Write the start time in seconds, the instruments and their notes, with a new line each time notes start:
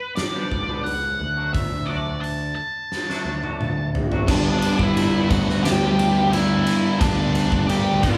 Already playing: lead electric guitar B4
0.16 lead electric guitar D5, muted clean electric guitar stroke, snare, open hi-hat
0.34 clean electric guitar G3 B3 D4 G4
0.52 picked electric bass C#2, kick
0.69 clean electric guitar G3 B3 D4 G4
0.84 lead electric guitar F#5, open hi-hat
1.02 muted clean electric guitar stroke
1.20 picked electric bass D2
1.37 clean electric guitar F#3 A3 D4 F#4
1.53 lead electric guitar E5, kick, open hi-hat
1.72 muted clean electric guitar stroke
1.86 clean electric guitar F#3 A3 D4 F#4, lead electric guitar D5
2.21 lead electric guitar A5, muted clean electric guitar stroke, open hi-hat
2.55 lead electric guitar A5
2.92 muted clean electric guitar stroke, snare
3.09 clean electric guitar F#3 A3 D4 F#4, snare
3.25 picked electric bass D2
3.43 clean electric guitar F#3 A3 D4 F#4, high tom
3.61 mid tom
3.78 muted clean electric guitar stroke
3.95 floor tom
4.12 clean electric guitar F#3 A3 D4 F#4, floor tom
4.27 picked electric bass G1, distorted electric guitar G2 D3 G3 B3 D4 G4, lead electric guitar D4 D5, kick, crash
4.62 ride
4.79 picked electric bass G1, lead electric guitar E4 E5, kick
4.97 ride
5.30 picked electric bass D2, distorted electric guitar G2 D3 G3 B3 D4, lead electric guitar F#4 F#5, kick, ride
5.50 snare
5.64 distorted electric guitar G2 D3 G3 B3 D4 G4, lead electric guitar G4 G5, snare, ride
5.99 ride
6.32 distorted electric guitar G2 D3 G3 B3 D4, lead electric guitar E4 E5, ride
6.67 ride
7.00 picked electric bass D2, distorted electric guitar G2 D3 G3 B3 D4 G4, lead electric guitar D4 D5, kick, ride
7.35 ride
7.52 picked electric bass D2, kick
7.69 lead electric guitar G4 G5, ride
8.02 picked electric bass G1, distorted electric guitar G2 D3 G3 B3 D4, lead electric guitar E4 E5, kick, ride